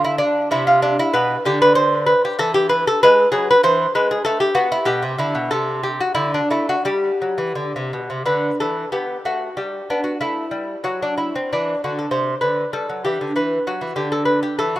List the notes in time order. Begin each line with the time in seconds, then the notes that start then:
Already playing: D3
0.04 E4
0.18 D4
0.51 C3 E4
0.67 F4
0.82 D4
0.99 E4
1.13 B2 B4
1.45 D3 G4
1.62 B4
1.75 C5
2.06 B4
2.25 G4
2.39 E3 A4
2.54 G4
2.69 B4
2.87 A4
3.03 G#3 B4
3.32 F#3 G#4
3.51 B4
3.63 E3 C5
3.95 G#3 B4
4.11 G#4
4.25 A3 A4
4.40 G4
4.55 B3 F#4
4.72 E4
4.85 B2 G4
5.02 C3
5.18 D3 E4
5.35 B2
5.51 C3 A4
5.83 G4
6.01 F#4
6.15 D3 E4
6.34 D4
6.51 A3 E4
6.69 F#4
6.85 G3 G4
7.22 F#3
7.38 E3
7.55 D3
7.76 C3
7.93 B2
8.10 C3
8.26 D3 B4
8.60 E3 A4
8.92 B3 G4
9.25 A3 F#4
9.57 G3 G4
9.90 B3 D4
10.04 F#4
10.21 A3 E4
10.51 G3
10.84 F#3 F#4
11.02 D4
11.18 E4
11.36 C4
11.53 E3 D4
11.84 D3 F#4
11.99 A4
12.11 C3 C5
12.41 D3 B4
12.73 G3 A4
12.89 F#3
13.05 E3 G4
13.21 D3
13.36 E3 B4
13.67 F#3 F#4
13.81 E3
13.96 D3 G4
14.12 A4
14.25 B4
14.43 G4
14.59 E3 A4
14.76 F#4